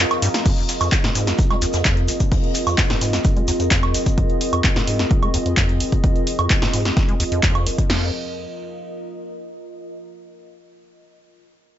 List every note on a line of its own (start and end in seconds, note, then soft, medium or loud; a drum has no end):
0.00 0.42 C4 medium
0.00 0.42 F4 medium
0.00 7.89 F4 medium
0.00 0.42 G#4 medium
0.00 7.90 A#4 medium
0.00 7.90 D#5 medium
0.00 0.44 F5 loud
0.11 snare soft
0.11 closed hi-hat soft
0.11 high woodblock medium
0.22 0.29 G2 loud
0.22 open hi-hat loud
0.22 maracas medium
0.22 shaker medium
0.34 snare medium
0.34 closed hi-hat medium
0.34 maracas soft
0.46 0.52 F2 medium
0.46 7.86 C4 medium
0.46 7.86 F4 medium
0.46 7.86 G#4 medium
0.46 7.86 D#5 loud
0.46 kick loud
0.46 closed hi-hat medium
0.46 crash medium
0.46 maracas soft
0.46 shaker medium
0.57 closed hi-hat soft
0.69 snare soft
0.69 open hi-hat loud
0.69 shaker medium
0.69 maracas medium
0.80 0.90 F2 medium
0.80 closed hi-hat soft
0.80 closed hi-hat medium
0.80 high woodblock medium
0.80 maracas medium
0.92 0.96 F2 loud
0.92 kick loud
0.92 snare loud
0.92 clap loud
0.92 closed hi-hat medium
0.92 maracas soft
0.92 shaker medium
1.04 1.10 G#2 medium
1.04 snare medium
1.04 closed hi-hat soft
1.15 1.29 G#2 medium
1.15 open hi-hat loud
1.15 shaker medium
1.15 maracas medium
1.27 1.34 F2 medium
1.27 snare medium
1.27 closed hi-hat medium
1.27 closed hi-hat soft
1.27 maracas medium
1.39 kick loud
1.39 closed hi-hat medium
1.39 shaker medium
1.39 maracas soft
1.51 1.57 G#3 medium
1.51 snare soft
1.51 closed hi-hat soft
1.51 high woodblock medium
1.61 1.66 D#2 loud
1.61 open hi-hat loud
1.61 shaker medium
1.61 maracas medium
1.73 1.83 F2 medium
1.73 snare soft
1.73 closed hi-hat medium
1.73 maracas medium
1.85 2.10 F2 loud
1.85 kick loud
1.85 snare loud
1.85 clap loud
1.85 closed hi-hat medium
1.85 maracas soft
1.85 shaker medium
1.97 closed hi-hat soft
2.08 2.12 F1 medium
2.08 open hi-hat loud
2.08 maracas medium
2.08 shaker medium
2.20 kick medium
2.20 closed hi-hat medium
2.20 maracas medium
2.32 2.38 F2 medium
2.32 kick loud
2.32 closed hi-hat soft
2.32 open hi-hat medium
2.32 maracas soft
2.44 closed hi-hat soft
2.54 open hi-hat loud
2.54 shaker medium
2.54 maracas medium
2.67 2.76 F2 medium
2.67 closed hi-hat medium
2.67 high woodblock medium
2.67 maracas medium
2.77 2.82 F2 loud
2.77 kick loud
2.77 snare loud
2.77 clap loud
2.77 closed hi-hat medium
2.77 shaker medium
2.77 maracas soft
2.90 2.96 G#2 medium
2.90 snare medium
2.90 closed hi-hat soft
3.01 3.15 G#2 medium
3.01 open hi-hat loud
3.01 shaker medium
3.01 maracas medium
3.13 3.20 F2 medium
3.13 snare medium
3.13 closed hi-hat soft
3.13 closed hi-hat medium
3.13 maracas soft
3.25 kick loud
3.25 closed hi-hat medium
3.25 maracas soft
3.25 shaker medium
3.37 3.43 G#3 medium
3.37 closed hi-hat soft
3.48 3.52 D#2 loud
3.48 open hi-hat loud
3.48 maracas medium
3.48 shaker medium
3.60 3.69 F2 medium
3.60 closed hi-hat medium
3.60 maracas medium
3.71 3.96 F2 loud
3.71 kick loud
3.71 snare loud
3.71 clap loud
3.71 closed hi-hat medium
3.71 shaker loud
3.71 maracas soft
3.83 snare soft
3.83 closed hi-hat soft
3.83 high woodblock medium
3.94 3.98 F1 medium
3.94 open hi-hat loud
3.94 shaker medium
3.94 maracas loud
4.06 kick medium
4.06 closed hi-hat medium
4.06 maracas soft
4.18 4.24 F2 medium
4.18 kick loud
4.18 closed hi-hat soft
4.30 closed hi-hat soft
4.41 open hi-hat loud
4.53 4.62 F2 medium
4.53 closed hi-hat medium
4.53 high woodblock medium
4.64 4.68 F2 loud
4.64 kick loud
4.64 clap loud
4.64 closed hi-hat medium
4.76 4.82 G#2 medium
4.76 snare medium
4.76 closed hi-hat soft
4.87 5.01 G#2 medium
4.87 open hi-hat loud
4.99 5.06 F2 medium
4.99 snare medium
4.99 closed hi-hat soft
5.11 kick loud
5.11 closed hi-hat medium
5.23 5.29 G#3 medium
5.23 closed hi-hat soft
5.23 high woodblock medium
5.34 5.38 D#2 loud
5.34 open hi-hat loud
5.46 5.55 F2 medium
5.46 closed hi-hat medium
5.57 5.82 F2 loud
5.57 kick loud
5.57 clap loud
5.57 closed hi-hat soft
5.69 closed hi-hat soft
5.80 5.84 F1 medium
5.80 open hi-hat loud
5.92 kick medium
5.92 closed hi-hat medium
6.04 6.10 F2 medium
6.04 kick loud
6.04 closed hi-hat soft
6.16 closed hi-hat soft
6.27 open hi-hat loud
6.39 6.48 F2 medium
6.39 closed hi-hat medium
6.39 high woodblock medium
6.50 6.54 F2 loud
6.50 kick loud
6.50 clap loud
6.50 closed hi-hat medium
6.62 6.68 G#2 medium
6.62 snare medium
6.62 closed hi-hat soft
6.74 6.87 G#2 medium
6.74 open hi-hat loud
6.85 6.92 F2 medium
6.85 snare medium
6.85 closed hi-hat soft
6.97 kick loud
6.97 snare medium
6.97 closed hi-hat soft
7.09 7.15 G#3 medium
7.09 closed hi-hat soft
7.20 7.24 D#2 loud
7.20 open hi-hat loud
7.32 7.41 F2 medium
7.32 closed hi-hat medium
7.43 kick loud
7.43 clap loud
7.43 closed hi-hat medium
7.55 closed hi-hat soft
7.55 high woodblock medium
7.67 7.70 F1 medium
7.67 open hi-hat loud
7.78 kick medium
7.78 closed hi-hat medium
7.90 8.11 F2 medium
7.90 8.11 C4 medium
7.90 9.72 F4 medium
7.90 8.11 F4 medium
7.90 8.11 G#4 medium
7.90 8.11 D#5 medium
7.90 snare loud
7.90 crash medium